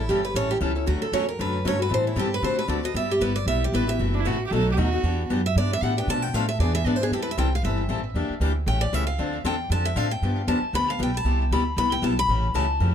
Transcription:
0.09 G1 E3 G3 C#4 E4 G4 A4
0.25 B4
0.34 A1 E3 G3 C#4 E4 A4 C#5
0.51 G4
0.61 C#2 E3 G3 C#4 E4 A4
0.76 C#4 E4 A4
0.86 D2 D3 F#3 A3 C#4 F#4
1.02 A4, muted upright bass stroke
1.12 E2 D3 F#3 A3 C#4 F#4 C#5
1.29 A#4
1.39 F#2 D3 F#3 A3 C#4 F#4 B4
1.65 G2 D3 F#3 A3 C#4 F#4 C#5
1.79 A3 C#4 F#4 B4
1.89 A2 E3 G3 C4 E4 A4
1.94 C5
2.07 E4
2.16 G2 E3 G3 C4 E4 G4 A4
2.34 B4
2.42 D3 A3 C4 F#4 A4 C5
2.59 B4
2.68 D2 D3 A3 C4 F#4 A4 D5
2.83 C4 F#4 A4 D#5
2.94 G2 G3 B3 E4 G4 E5
3.11 G4
3.20 G1 G3 B3 E4 G4 B4
3.36 D5
3.46 B1 G3 B3 E4 G4 E5
3.64 G4
3.72 A1 G3 B3 E4 G4 B4
3.87 B3 E4 G4 E5
3.99 F#1 C3 E3 A3 E4 F#4
4.14 D4
4.20 E4
4.25 A1 C3 E3 A3 E4 F#4
4.46 G4
4.51 B1 B2 F#3 A3 D#4 F#4 A4
4.72 G4
4.77 D#2 B2 F#3 A3 D#4 F#4
4.93 A3 D#4 F#4
5.03 E2 E3 B3 D4 G4
5.30 F#2 E3 B3 D4 G4
5.46 E5
5.56 G2 E3 B3 D4 G4 D5
5.73 E5
5.82 A2 E3 B3 D4 G4 F#5
5.97 B3 D4 G4 G5
6.07 B2 F3 A3 D4 A4 A5
6.22 G5
6.34 A2 B2 F3 A3 D4 A4 F5
6.49 E5
6.59 E2 E3 B3 D4 G#4 D5
6.75 E5
6.85 G#2 E3 B3 D4 G#4 D5
6.96 C5
7.01 B3 D4 G#4
7.11 E2 E3 G3 C4 E4 G4 A4
7.22 B4
7.31 E5
7.37 C2 E3 G3 C4 E4 A4 G5
7.55 F5
7.63 G1 E3 G3 C4 E4 A4 E5
7.88 A1 E3 G3 C4 E4 A4
8.14 E2 E3 A#3 D4 G4
8.29 muted upright bass stroke
8.40 D2 E3 A#3 D4 G4
8.66 A1 C#3 E3 A3 C#4 G4 G5
8.81 D5
8.93 C#2 C#3 E3 A3 C#4 G4 E5
9.07 F5
9.18 D2 D3 F3 C4 D4 A4
9.44 E2 D3 F3 C4 D4 A4 G5
9.70 F2 D3 F3 C4 D4 A4 A5
9.85 E5
9.96 A2 D3 F3 C4 D4 A4 F5
10.11 G5
10.22 G2 D3 F3 B3 D4 G4
10.47 E2 D3 F3 B3 D4 G4 A5
10.61 muted upright bass stroke
10.73 D2 D3 F3 B3 D4 G4 B5
10.90 F5
10.99 B1 D3 F3 B3 D4 G4 G5
11.17 A5
11.24 C2 C3 G3 B3 E4 G4
11.51 D2 C3 G3 B3 E4 G4 B5
11.77 C2 C3 G3 B3 E4 G4 B5
11.92 G5
12.02 B1 C3 G3 B3 E4 G4 A5
12.19 B5
12.28 A1 C#3 E3 A3 C#4 G4
12.54 C#2 C#3 E3 A3 C#4 G4 A5
12.80 F2 C#3 E3 A3 C#4 G4

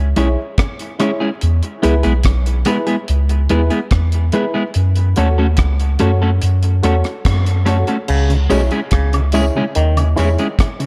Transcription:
Already playing: C#2
0.16 B1 G#3 C#4 E4 G#4 C#5, closed hi-hat
0.58 kick, cross-stick, closed hi-hat
0.79 closed hi-hat
0.99 G#3 C#4 E4 G#4 C#5, cross-stick, closed hi-hat
1.20 G#3 C#4 E4 G#4 C#5
1.41 E2, closed hi-hat
1.63 closed hi-hat
1.82 C#2 G#3 B3 E4 G#4 B4, closed hi-hat
2.03 B1 G#3 B3 E4 G#4, closed hi-hat
2.23 B1, kick, cross-stick, closed hi-hat
2.46 closed hi-hat
2.65 G#3 B3 E4 G#4 B4, closed hi-hat
2.87 G#3 B3 E4 G#4, closed hi-hat
3.08 C#2, closed hi-hat
3.29 closed hi-hat
3.49 D#2 G#3 B3 E4 G#4 B4, closed hi-hat
3.70 G#3 B3 E4 G#4, closed hi-hat
3.91 E2, kick, cross-stick, closed hi-hat
4.12 closed hi-hat
4.32 G#3 B3 E4 G#4 B4, closed hi-hat
4.54 G#3 B3 E4 G#4 B4
4.74 F#2, closed hi-hat
4.96 closed hi-hat
5.16 D#2 A3 C#4 F#4 A4 C#5, closed hi-hat
5.38 A3 C#4 F#4 A4
5.57 C#2, kick, cross-stick, closed hi-hat
5.80 closed hi-hat
5.99 F#2 A3 C#4 F#4 A4 C#5, closed hi-hat
6.22 A3 C#4 F#4 A4
6.42 F#2, closed hi-hat
6.63 closed hi-hat
6.83 E2 A3 C#4 F#4 A4 C#5, closed hi-hat
7.04 cross-stick, closed hi-hat
7.25 F#2, kick, cross-stick, closed hi-hat
7.46 closed hi-hat
7.66 A3 C#4 F#4 A4 C#5, cross-stick, closed hi-hat
7.87 A3 C#4 F#4 A4 C#5, closed hi-hat
8.08 C#2 C#3, crash
8.29 C#3, closed hi-hat
8.50 B1 B2 G#3 C#4 E4 G#4 C#5, closed hi-hat, tambourine
8.71 G#3 C#4 E4 G#4, closed hi-hat
8.91 C#2 C#3, kick, cross-stick, closed hi-hat
9.13 C#3, closed hi-hat, high woodblock
9.32 G#3 C#4 E4 G#4 C#5, closed hi-hat, tambourine
9.55 C#3 G#3 C#4 E4 G#4 C#5
9.75 D#2 D#3, closed hi-hat
9.96 C#3, closed hi-hat, high woodblock
10.16 E2 E3 G#3 C#4 E4 G#4 C#5, closed hi-hat, tambourine
10.38 G#3 C#4 E4 G#4, closed hi-hat
10.59 kick, cross-stick, closed hi-hat
10.80 C#3, closed hi-hat

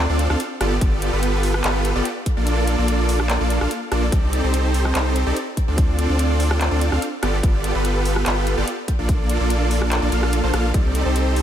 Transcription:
0.09 D2 C4 D4 F4 A4 D5
0.19 closed hi-hat
0.30 D2 C4 D4 F4 A4 F5, cross-stick
0.40 closed hi-hat
0.60 G1 B3 F4 G4 A4 D5, cross-stick, closed hi-hat
0.81 G1 B3 G4 A4, kick, closed hi-hat
1.02 closed hi-hat
1.13 G1 B3 F4 G4 A4 B4
1.23 closed hi-hat
1.43 open hi-hat
1.54 cross-stick
1.64 G1 B3 F4 G4 A4 B4, clap, closed hi-hat
1.85 closed hi-hat
1.96 G1 B3 F4 G4 A4 D5
2.05 closed hi-hat
2.26 kick, closed hi-hat
2.37 A#1 A#3 D4 F4 A4 D5
2.47 closed hi-hat
2.67 closed hi-hat
2.78 A#1 A#3 D4 F4 A4 D5
2.88 closed hi-hat
3.09 open hi-hat
3.20 cross-stick
3.30 clap, closed hi-hat
3.40 A#1 A#3 D4 F4 A4 D5
3.50 closed hi-hat
3.61 A#1 A#3 D4 F4 A4 F5, cross-stick
3.71 closed hi-hat
3.92 A#1 A#3 D4 F4 A4 D5, cross-stick, closed hi-hat
4.12 C2 C4 D#4 G4 A4, kick, closed hi-hat
4.33 closed hi-hat
4.44 C2 C4 D#4 G4 A4 C5
4.54 closed hi-hat
4.74 open hi-hat
4.85 cross-stick
4.95 C2 C4 D#4 G4 A4 C5, clap, closed hi-hat
5.16 closed hi-hat
5.27 C2 C4 D#4 G4 A4 D5
5.37 closed hi-hat
5.57 kick, closed hi-hat
5.68 D2 C4 D4 F4 A4 D5
5.78 kick, closed hi-hat
5.99 closed hi-hat
6.09 D2 C4 D4 F4 A4 D5
6.19 closed hi-hat
6.40 open hi-hat
6.51 cross-stick
6.61 clap, closed hi-hat
6.71 D2 C4 D4 F4 A4 D5
6.81 closed hi-hat
6.92 D2 C4 D4 F4 A4 F5, cross-stick
7.02 closed hi-hat
7.23 G1 B3 F4 G4 A4 D5, cross-stick, closed hi-hat
7.43 G1 B3 F4 A4, kick, closed hi-hat
7.64 closed hi-hat
7.75 G1 B3 F4 G4 A4 B4
7.85 closed hi-hat
8.05 open hi-hat
8.16 cross-stick
8.26 G1 B3 F4 G4 A4 B4, clap, closed hi-hat
8.47 closed hi-hat
8.58 G1 B3 F4 G4 A4 D5
8.68 closed hi-hat
8.88 kick, closed hi-hat
8.99 A#1 A#3 D4 F4 A4 D5
9.09 kick, closed hi-hat
9.30 closed hi-hat
9.40 A#1 A#3 D4 F4 A4 D5
9.50 closed hi-hat
9.71 open hi-hat
9.82 cross-stick
9.92 clap, closed hi-hat
10.02 A#1 A#3 D4 F4 A4 D5
10.12 A#1 A#3 D4 F4 A4 F5, closed hi-hat
10.23 cross-stick
10.33 closed hi-hat
10.43 A#1 A#3 D4 F4 A4 C5
10.53 A#1 A#3 D4 F4 A4 F5, cross-stick, closed hi-hat
10.74 C2 C4 D#4 G4 A4 D5, kick, closed hi-hat
10.95 closed hi-hat
11.05 C2 C4 D#4 G4 A4 C5
11.16 closed hi-hat
11.36 open hi-hat

